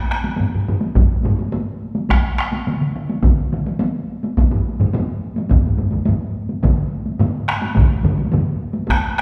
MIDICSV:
0, 0, Header, 1, 2, 480
1, 0, Start_track
1, 0, Tempo, 567108
1, 1781, Time_signature, 4, 2, 24, 8
1, 7803, End_track
2, 0, Start_track
2, 0, Title_t, "Taiko and cinematic ensemble drums"
2, 97, Note_on_c, 9, 37, 62
2, 182, Note_off_c, 9, 37, 0
2, 203, Note_on_c, 9, 48, 42
2, 288, Note_off_c, 9, 48, 0
2, 318, Note_on_c, 9, 48, 56
2, 334, Note_on_c, 9, 45, 65
2, 402, Note_off_c, 9, 48, 0
2, 419, Note_off_c, 9, 45, 0
2, 461, Note_on_c, 9, 45, 60
2, 546, Note_off_c, 9, 45, 0
2, 579, Note_on_c, 9, 45, 90
2, 664, Note_off_c, 9, 45, 0
2, 684, Note_on_c, 9, 48, 48
2, 769, Note_off_c, 9, 48, 0
2, 805, Note_on_c, 9, 48, 53
2, 812, Note_on_c, 9, 41, 99
2, 816, Note_on_c, 9, 45, 79
2, 890, Note_off_c, 9, 48, 0
2, 896, Note_off_c, 9, 41, 0
2, 900, Note_off_c, 9, 45, 0
2, 1051, Note_on_c, 9, 48, 40
2, 1056, Note_on_c, 9, 45, 87
2, 1135, Note_off_c, 9, 48, 0
2, 1141, Note_off_c, 9, 45, 0
2, 1175, Note_on_c, 9, 48, 51
2, 1260, Note_off_c, 9, 48, 0
2, 1291, Note_on_c, 9, 48, 66
2, 1375, Note_off_c, 9, 48, 0
2, 1649, Note_on_c, 9, 48, 44
2, 1734, Note_off_c, 9, 48, 0
2, 1770, Note_on_c, 9, 48, 65
2, 1778, Note_on_c, 9, 41, 87
2, 1780, Note_on_c, 9, 37, 66
2, 1855, Note_off_c, 9, 48, 0
2, 1863, Note_off_c, 9, 41, 0
2, 1865, Note_off_c, 9, 37, 0
2, 2022, Note_on_c, 9, 37, 66
2, 2106, Note_off_c, 9, 37, 0
2, 2130, Note_on_c, 9, 48, 44
2, 2215, Note_off_c, 9, 48, 0
2, 2259, Note_on_c, 9, 48, 53
2, 2267, Note_on_c, 9, 47, 60
2, 2344, Note_off_c, 9, 48, 0
2, 2352, Note_off_c, 9, 47, 0
2, 2380, Note_on_c, 9, 47, 60
2, 2464, Note_off_c, 9, 47, 0
2, 2502, Note_on_c, 9, 47, 87
2, 2587, Note_off_c, 9, 47, 0
2, 2619, Note_on_c, 9, 48, 53
2, 2703, Note_off_c, 9, 48, 0
2, 2732, Note_on_c, 9, 41, 97
2, 2733, Note_on_c, 9, 48, 62
2, 2739, Note_on_c, 9, 47, 86
2, 2817, Note_off_c, 9, 41, 0
2, 2818, Note_off_c, 9, 48, 0
2, 2824, Note_off_c, 9, 47, 0
2, 2979, Note_on_c, 9, 48, 43
2, 2986, Note_on_c, 9, 47, 89
2, 3064, Note_off_c, 9, 48, 0
2, 3071, Note_off_c, 9, 47, 0
2, 3103, Note_on_c, 9, 48, 55
2, 3187, Note_off_c, 9, 48, 0
2, 3220, Note_on_c, 9, 48, 72
2, 3304, Note_off_c, 9, 48, 0
2, 3581, Note_on_c, 9, 48, 46
2, 3666, Note_off_c, 9, 48, 0
2, 3699, Note_on_c, 9, 41, 84
2, 3701, Note_on_c, 9, 48, 70
2, 3784, Note_off_c, 9, 41, 0
2, 3785, Note_off_c, 9, 48, 0
2, 3820, Note_on_c, 9, 45, 85
2, 3904, Note_off_c, 9, 45, 0
2, 4060, Note_on_c, 9, 45, 80
2, 4061, Note_on_c, 9, 48, 48
2, 4145, Note_off_c, 9, 45, 0
2, 4146, Note_off_c, 9, 48, 0
2, 4176, Note_on_c, 9, 48, 63
2, 4182, Note_on_c, 9, 45, 85
2, 4261, Note_off_c, 9, 48, 0
2, 4266, Note_off_c, 9, 45, 0
2, 4538, Note_on_c, 9, 48, 56
2, 4623, Note_off_c, 9, 48, 0
2, 4651, Note_on_c, 9, 48, 62
2, 4663, Note_on_c, 9, 41, 102
2, 4663, Note_on_c, 9, 45, 61
2, 4735, Note_off_c, 9, 48, 0
2, 4748, Note_off_c, 9, 41, 0
2, 4748, Note_off_c, 9, 45, 0
2, 4782, Note_on_c, 9, 45, 61
2, 4867, Note_off_c, 9, 45, 0
2, 4888, Note_on_c, 9, 48, 42
2, 4895, Note_on_c, 9, 45, 70
2, 4973, Note_off_c, 9, 48, 0
2, 4980, Note_off_c, 9, 45, 0
2, 5012, Note_on_c, 9, 48, 52
2, 5022, Note_on_c, 9, 45, 58
2, 5096, Note_off_c, 9, 48, 0
2, 5106, Note_off_c, 9, 45, 0
2, 5129, Note_on_c, 9, 48, 68
2, 5150, Note_on_c, 9, 45, 79
2, 5214, Note_off_c, 9, 48, 0
2, 5235, Note_off_c, 9, 45, 0
2, 5494, Note_on_c, 9, 48, 43
2, 5579, Note_off_c, 9, 48, 0
2, 5615, Note_on_c, 9, 47, 90
2, 5618, Note_on_c, 9, 48, 66
2, 5621, Note_on_c, 9, 41, 88
2, 5623, Note_on_c, 9, 45, 91
2, 5700, Note_off_c, 9, 47, 0
2, 5702, Note_off_c, 9, 48, 0
2, 5706, Note_off_c, 9, 41, 0
2, 5708, Note_off_c, 9, 45, 0
2, 5973, Note_on_c, 9, 48, 42
2, 6058, Note_off_c, 9, 48, 0
2, 6089, Note_on_c, 9, 45, 91
2, 6095, Note_on_c, 9, 48, 63
2, 6096, Note_on_c, 9, 47, 86
2, 6174, Note_off_c, 9, 45, 0
2, 6179, Note_off_c, 9, 48, 0
2, 6181, Note_off_c, 9, 47, 0
2, 6336, Note_on_c, 9, 37, 63
2, 6337, Note_off_c, 9, 37, 0
2, 6337, Note_on_c, 9, 37, 64
2, 6422, Note_off_c, 9, 37, 0
2, 6446, Note_on_c, 9, 48, 55
2, 6530, Note_off_c, 9, 48, 0
2, 6559, Note_on_c, 9, 48, 61
2, 6565, Note_on_c, 9, 47, 96
2, 6577, Note_on_c, 9, 41, 94
2, 6577, Note_on_c, 9, 45, 80
2, 6643, Note_off_c, 9, 48, 0
2, 6649, Note_off_c, 9, 47, 0
2, 6661, Note_off_c, 9, 41, 0
2, 6662, Note_off_c, 9, 45, 0
2, 6799, Note_on_c, 9, 48, 47
2, 6811, Note_on_c, 9, 47, 89
2, 6820, Note_on_c, 9, 45, 82
2, 6883, Note_off_c, 9, 48, 0
2, 6895, Note_off_c, 9, 47, 0
2, 6904, Note_off_c, 9, 45, 0
2, 6922, Note_on_c, 9, 48, 52
2, 7007, Note_off_c, 9, 48, 0
2, 7040, Note_on_c, 9, 48, 65
2, 7049, Note_on_c, 9, 47, 83
2, 7058, Note_on_c, 9, 45, 84
2, 7124, Note_off_c, 9, 48, 0
2, 7133, Note_off_c, 9, 47, 0
2, 7142, Note_off_c, 9, 45, 0
2, 7396, Note_on_c, 9, 48, 48
2, 7480, Note_off_c, 9, 48, 0
2, 7508, Note_on_c, 9, 48, 63
2, 7529, Note_on_c, 9, 41, 90
2, 7535, Note_on_c, 9, 37, 69
2, 7593, Note_off_c, 9, 48, 0
2, 7613, Note_off_c, 9, 41, 0
2, 7620, Note_off_c, 9, 37, 0
2, 7773, Note_on_c, 9, 37, 67
2, 7803, Note_off_c, 9, 37, 0
2, 7803, End_track
0, 0, End_of_file